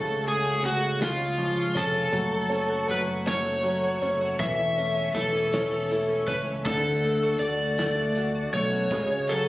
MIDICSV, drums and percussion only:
0, 0, Header, 1, 2, 480
1, 0, Start_track
1, 0, Key_signature, 3, "minor"
1, 0, Tempo, 752823
1, 1360, Time_signature, 6, 3, 24, 8
1, 6046, End_track
2, 0, Start_track
2, 0, Title_t, "Drums"
2, 167, Note_on_c, 9, 42, 46
2, 231, Note_off_c, 9, 42, 0
2, 397, Note_on_c, 9, 42, 56
2, 461, Note_off_c, 9, 42, 0
2, 642, Note_on_c, 9, 42, 78
2, 650, Note_on_c, 9, 38, 86
2, 706, Note_off_c, 9, 42, 0
2, 714, Note_off_c, 9, 38, 0
2, 879, Note_on_c, 9, 42, 47
2, 943, Note_off_c, 9, 42, 0
2, 1120, Note_on_c, 9, 36, 88
2, 1127, Note_on_c, 9, 42, 55
2, 1184, Note_off_c, 9, 36, 0
2, 1190, Note_off_c, 9, 42, 0
2, 1360, Note_on_c, 9, 36, 120
2, 1361, Note_on_c, 9, 42, 95
2, 1424, Note_off_c, 9, 36, 0
2, 1425, Note_off_c, 9, 42, 0
2, 1604, Note_on_c, 9, 42, 48
2, 1668, Note_off_c, 9, 42, 0
2, 1837, Note_on_c, 9, 42, 54
2, 1901, Note_off_c, 9, 42, 0
2, 2080, Note_on_c, 9, 42, 83
2, 2088, Note_on_c, 9, 38, 87
2, 2144, Note_off_c, 9, 42, 0
2, 2152, Note_off_c, 9, 38, 0
2, 2316, Note_on_c, 9, 42, 48
2, 2380, Note_off_c, 9, 42, 0
2, 2562, Note_on_c, 9, 42, 54
2, 2625, Note_off_c, 9, 42, 0
2, 2801, Note_on_c, 9, 36, 108
2, 2801, Note_on_c, 9, 42, 92
2, 2864, Note_off_c, 9, 36, 0
2, 2864, Note_off_c, 9, 42, 0
2, 3046, Note_on_c, 9, 42, 44
2, 3110, Note_off_c, 9, 42, 0
2, 3281, Note_on_c, 9, 42, 51
2, 3345, Note_off_c, 9, 42, 0
2, 3523, Note_on_c, 9, 42, 80
2, 3531, Note_on_c, 9, 38, 92
2, 3587, Note_off_c, 9, 42, 0
2, 3595, Note_off_c, 9, 38, 0
2, 3758, Note_on_c, 9, 42, 49
2, 3821, Note_off_c, 9, 42, 0
2, 4003, Note_on_c, 9, 36, 98
2, 4003, Note_on_c, 9, 42, 55
2, 4066, Note_off_c, 9, 36, 0
2, 4067, Note_off_c, 9, 42, 0
2, 4242, Note_on_c, 9, 36, 126
2, 4242, Note_on_c, 9, 42, 85
2, 4306, Note_off_c, 9, 36, 0
2, 4306, Note_off_c, 9, 42, 0
2, 4485, Note_on_c, 9, 42, 47
2, 4549, Note_off_c, 9, 42, 0
2, 4718, Note_on_c, 9, 42, 54
2, 4781, Note_off_c, 9, 42, 0
2, 4960, Note_on_c, 9, 42, 78
2, 4968, Note_on_c, 9, 38, 94
2, 5023, Note_off_c, 9, 42, 0
2, 5031, Note_off_c, 9, 38, 0
2, 5197, Note_on_c, 9, 42, 45
2, 5260, Note_off_c, 9, 42, 0
2, 5440, Note_on_c, 9, 42, 59
2, 5504, Note_off_c, 9, 42, 0
2, 5680, Note_on_c, 9, 42, 91
2, 5681, Note_on_c, 9, 36, 123
2, 5744, Note_off_c, 9, 42, 0
2, 5745, Note_off_c, 9, 36, 0
2, 5924, Note_on_c, 9, 42, 42
2, 5988, Note_off_c, 9, 42, 0
2, 6046, End_track
0, 0, End_of_file